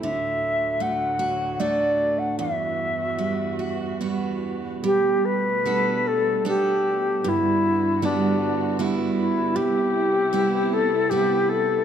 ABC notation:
X:1
M:3/4
L:1/16
Q:1/4=76
K:Em
V:1 name="Flute"
e4 f4 d3 f | e8 z4 | G2 B4 A2 G4 | E4 D4 z2 E2 |
G6 A2 G2 A2 |]
V:2 name="Steel-string acoustic guitar"
D,4 A,2 F2 [A,DF]4 | E,,4 G,2 F2 [G,B,F]4 | G,4 [B,DA]4 [B,DA]4 | G,,4 [G,B,E]4 [G,B,E]4 |
C,4 [G,B,E]4 [G,B,E]4 |]
V:3 name="String section" clef=bass
[D,,A,,F,]12 | [G,,E,F]12 | [B,,G,A,]12 | [G,,D,F]12 |
[C,B,E]12 |]